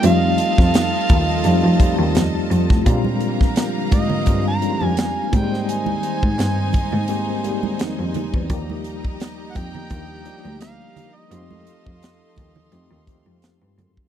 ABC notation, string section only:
X:1
M:4/4
L:1/8
Q:"Swing 16ths" 1/4=85
K:Fdor
V:1 name="String section"
[Fe=a]8 | [G,fb]6- [G,fb] [Eca]- | [Eca]8 | [Geb]8 |
[=Afc']8 |]